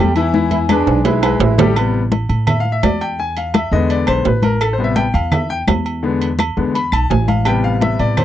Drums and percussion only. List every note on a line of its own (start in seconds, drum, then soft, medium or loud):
0.16 low agogo medium
0.34 high conga medium
0.51 high conga medium
0.51 low agogo medium
0.69 high conga medium
0.69 low timbale medium
0.69 low agogo loud
0.69 claves medium
0.87 high timbale medium
1.05 low timbale medium
1.05 low agogo medium
1.23 high timbale medium
1.23 low agogo loud
1.23 claves medium
1.40 low timbale loud
1.58 low conga loud
1.58 low timbale loud
1.58 low agogo medium
1.76 high conga soft
1.76 low agogo loud
1.76 claves medium
1.94 high conga soft
2.12 high conga medium
2.12 low timbale medium
2.12 low agogo medium
2.29 high conga soft
2.29 low agogo medium
2.47 high conga soft
2.47 low conga medium
2.47 low agogo loud
2.47 claves medium
2.65 high conga soft
2.83 high conga medium
2.83 low timbale medium
2.83 low agogo loud
2.83 claves medium
3.01 low agogo medium
3.19 high conga soft
3.37 high conga soft
3.37 low agogo medium
3.54 high conga medium
3.54 low timbale medium
3.54 low agogo loud
3.54 claves medium
3.73 high conga soft
3.90 high conga soft
3.90 low agogo medium
4.07 high conga soft
4.07 low agogo loud
4.07 claves medium
4.25 high conga soft
4.25 low timbale medium
4.42 high conga medium
4.42 low agogo medium
4.60 high conga soft
4.60 low agogo loud
4.60 claves medium
4.78 high conga soft
4.96 high conga medium
4.96 low timbale medium
4.96 low agogo medium
5.14 high conga soft
5.14 low agogo medium
5.32 high conga soft
5.32 low conga medium
5.32 low agogo loud
5.32 claves medium
5.49 high conga soft
5.67 high conga medium
5.67 low timbale medium
5.67 low agogo loud
5.67 claves medium
5.86 low agogo medium
6.03 high conga soft
6.21 high conga soft
6.21 low agogo medium
6.39 high conga medium
6.39 low timbale medium
6.39 low agogo loud
6.39 claves medium
6.57 high conga soft
6.74 high conga soft
6.74 low agogo medium
6.92 high conga soft
6.92 low agogo loud
6.92 claves medium
7.11 high conga soft
7.11 low timbale medium
7.28 high conga medium
7.28 low agogo medium
7.45 high conga soft
7.45 low agogo loud
7.45 claves medium
7.64 high conga soft
7.81 high conga medium
7.81 low timbale medium
7.81 low agogo medium
7.99 high conga soft
7.99 low agogo medium
8.17 high conga soft
8.17 low conga medium
8.17 low agogo loud
8.17 claves medium